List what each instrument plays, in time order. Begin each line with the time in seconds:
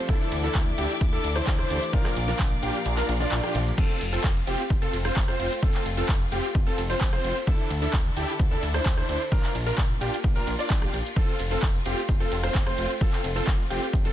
Already playing: felt piano F3 A3 C4 D4 F4 G4, string section A4
0.08 analog synth bass D2, felt piano E3 A3 D4 E4, supersaw synth D4 E4 A4, grand piano A4, string section D5 E5 D6, kick, closed hi-hat, ride, shaker
0.21 shaker
0.32 analog synth bass D2, open hi-hat, ride
0.42 felt piano E3 A3 D4 E4, supersaw synth D4 E4 A4, grand piano A4, closed hi-hat, shaker
0.55 analog synth bass D2, kick, clap, closed hi-hat, ride, shaker
0.66 closed hi-hat, shaker
0.78 analog synth bass D2, supersaw synth D4 E4 G4, grand piano G4, open hi-hat, ride
0.90 closed hi-hat, shaker
1.01 analog synth bass D2, kick, closed hi-hat, ride, shaker
1.13 supersaw synth D4 E4 A4, grand piano A4, closed hi-hat, shaker
1.24 analog synth bass D2, open hi-hat, ride
1.35 felt piano E3 A3 D4 E4, supersaw synth D4 E4 C5, grand piano C5, cross-stick, closed hi-hat, shaker
1.47 analog synth bass D2, kick, clap, closed hi-hat, ride, shaker
1.59 supersaw synth D4 E4 C5, grand piano C5, cross-stick, closed hi-hat, shaker
1.70 analog synth bass D2, felt piano E3 A3 D4 G4, open hi-hat, ride
1.82 closed hi-hat, shaker
1.93 analog synth bass A#1, felt piano A#2 F3 A#3 D4 F4, supersaw synth D4 F4 A#4, grand piano A#4, string section A#4 F5, kick, closed hi-hat, ride, shaker
2.05 cross-stick, clap, closed hi-hat, shaker
2.16 analog synth bass A#1, open hi-hat, ride
2.27 felt piano A#2 F3 A#3 D4 F4, supersaw synth D4 F4 A#4, grand piano A#4, closed hi-hat, shaker
2.39 analog synth bass A#1, kick, clap, closed hi-hat, ride, shaker
2.51 closed hi-hat, shaker
2.63 analog synth bass A#1, supersaw synth D4 F4 G4, grand piano G4, open hi-hat, ride
2.74 closed hi-hat, shaker
2.86 analog synth bass A#1, closed hi-hat, ride, shaker
2.97 supersaw synth D4 F4 A#4, grand piano A#4, clap, closed hi-hat, shaker
3.09 analog synth bass A#1, open hi-hat, ride
3.20 felt piano A#2 F3 A#3 D4 F4, supersaw synth D4 F4 D5, grand piano D5, closed hi-hat, shaker
3.32 analog synth bass A#1, clap, closed hi-hat, ride, shaker
3.43 supersaw synth D4 F4 G4, grand piano G4, cross-stick, closed hi-hat, shaker
3.54 analog synth bass A#1, felt piano F3 A#3 D4 G4, open hi-hat, ride
3.67 closed hi-hat, shaker
3.78 analog synth bass F1, string section A3 C4 F4, supersaw synth C4 F4 A4, grand piano A4, kick, closed hi-hat, crash, shaker
3.90 closed hi-hat, shaker
4.01 analog synth bass F1, open hi-hat, ride
4.13 supersaw synth C4 F4 A4, grand piano A4, closed hi-hat, shaker
4.24 analog synth bass F1, kick, clap, closed hi-hat, shaker
4.36 closed hi-hat, shaker
4.47 analog synth bass F1, supersaw synth C4 F4 G4, grand piano G4, open hi-hat, ride
4.59 closed hi-hat, shaker
4.70 analog synth bass F1, kick, closed hi-hat, shaker
4.82 supersaw synth C4 F4 A4, grand piano A4, closed hi-hat, shaker
4.93 analog synth bass F1, open hi-hat, ride
5.05 supersaw synth C4 F4 C5, grand piano C5, cross-stick, closed hi-hat, shaker
5.16 analog synth bass F1, kick, clap, closed hi-hat, shaker
5.28 supersaw synth C4 F4 C5, grand piano C5, cross-stick, closed hi-hat, shaker
5.40 analog synth bass F1, open hi-hat, ride
5.51 closed hi-hat, shaker
5.63 analog synth bass F1, supersaw synth C4 F4 A4, grand piano A4, kick, closed hi-hat, shaker
5.74 clap, closed hi-hat, shaker
5.86 analog synth bass F1, open hi-hat, ride
5.97 supersaw synth C4 F4 A4, grand piano A4, closed hi-hat, shaker
6.09 analog synth bass F1, kick, clap, closed hi-hat, shaker
6.21 closed hi-hat, shaker
6.32 analog synth bass F1, supersaw synth C4 F4 G4, grand piano G4, open hi-hat, ride
6.44 closed hi-hat, shaker
6.55 analog synth bass F1, kick, closed hi-hat, shaker
6.66 supersaw synth C4 F4 A4, grand piano A4, closed hi-hat, shaker
6.78 analog synth bass F1, open hi-hat, ride
6.89 supersaw synth C4 F4 C5, grand piano C5, closed hi-hat, shaker
7.01 analog synth bass F1, kick, clap, closed hi-hat, shaker
7.13 supersaw synth C4 F4 C5, grand piano C5, cross-stick, closed hi-hat, shaker
7.24 analog synth bass F1, open hi-hat, ride
7.36 closed hi-hat, shaker
7.47 analog synth bass D2, string section D3 D4 E4 A4, supersaw synth D4 E4 A4, grand piano A4, kick, closed hi-hat, shaker
7.59 closed hi-hat, shaker
7.70 analog synth bass D2, open hi-hat, ride
7.82 supersaw synth D4 E4 A4, grand piano A4, closed hi-hat, shaker
7.93 analog synth bass D2, kick, clap, closed hi-hat, shaker
8.05 closed hi-hat, shaker
8.16 analog synth bass D2, supersaw synth D4 E4 G4, grand piano G4, open hi-hat, ride
8.28 closed hi-hat, shaker
8.40 analog synth bass D2, kick, closed hi-hat, shaker
8.51 supersaw synth D4 E4 A4, grand piano A4, closed hi-hat, shaker
8.63 analog synth bass D2, open hi-hat, ride
8.74 supersaw synth D4 E4 C5, grand piano C5, cross-stick, closed hi-hat, shaker
8.86 analog synth bass D2, kick, clap, closed hi-hat, shaker
8.97 supersaw synth D4 E4 C5, grand piano C5, cross-stick, closed hi-hat, shaker
9.09 analog synth bass D2, open hi-hat, ride
9.21 closed hi-hat, shaker
9.32 analog synth bass A#1, string section A#3 D4 F4, supersaw synth D4 F4 A#4, grand piano A#4, kick, closed hi-hat, shaker
9.43 clap, closed hi-hat, shaker
9.55 analog synth bass A#1, open hi-hat, ride
9.66 supersaw synth D4 F4 A#4, grand piano A#4, closed hi-hat, shaker
9.78 analog synth bass A#1, kick, clap, closed hi-hat, shaker
9.90 closed hi-hat, shaker
10.01 analog synth bass A#1, supersaw synth D4 F4 G4, grand piano G4, open hi-hat, ride
10.13 closed hi-hat, shaker
10.24 analog synth bass A#1, kick, closed hi-hat, shaker
10.36 supersaw synth D4 F4 A#4, grand piano A#4, closed hi-hat, shaker
10.47 analog synth bass A#1, open hi-hat, ride
10.59 supersaw synth D4 F4 D5, grand piano D5, closed hi-hat, shaker
10.70 analog synth bass A#1, kick, clap, closed hi-hat, shaker
10.82 supersaw synth D4 F4 G4, grand piano G4, cross-stick, closed hi-hat, shaker
10.93 analog synth bass A#1, open hi-hat, ride
11.05 closed hi-hat, shaker
11.16 analog synth bass F1, string section A3 C4, supersaw synth C4 F4 A4, grand piano A4, kick, closed hi-hat, shaker
11.28 closed hi-hat, shaker
11.40 analog synth bass F1, open hi-hat, ride
11.51 supersaw synth C4 F4 A4, grand piano A4, closed hi-hat, shaker
11.62 analog synth bass F1, kick, clap, closed hi-hat, shaker
11.74 closed hi-hat, shaker
11.86 analog synth bass F1, supersaw synth C4 F4 G4, grand piano G4, open hi-hat, ride
11.97 closed hi-hat, shaker
12.09 analog synth bass F1, kick, closed hi-hat, shaker
12.20 supersaw synth C4 F4 A4, grand piano A4, closed hi-hat, shaker
12.32 analog synth bass F1, open hi-hat, ride
12.43 supersaw synth C4 F4 C5, grand piano C5, cross-stick, shaker
12.55 analog synth bass F1, kick, clap, closed hi-hat, shaker
12.66 supersaw synth C4 F4 C5, grand piano C5, cross-stick, closed hi-hat, shaker
12.78 analog synth bass F1, open hi-hat, ride
12.90 closed hi-hat, shaker
13.01 analog synth bass F1, supersaw synth C4 F4 A4, grand piano A4, kick, closed hi-hat, shaker
13.13 clap, closed hi-hat, shaker
13.24 analog synth bass F1, open hi-hat, ride
13.36 supersaw synth C4 F4 A4, grand piano A4, closed hi-hat, shaker
13.47 analog synth bass F1, kick, clap, closed hi-hat, shaker
13.59 closed hi-hat, shaker
13.70 analog synth bass F1, supersaw synth C4 F4 G4, grand piano G4, open hi-hat, ride
13.82 closed hi-hat, shaker
13.93 analog synth bass F1, kick, closed hi-hat, shaker
14.05 supersaw synth C4 F4 A4, grand piano A4, closed hi-hat, shaker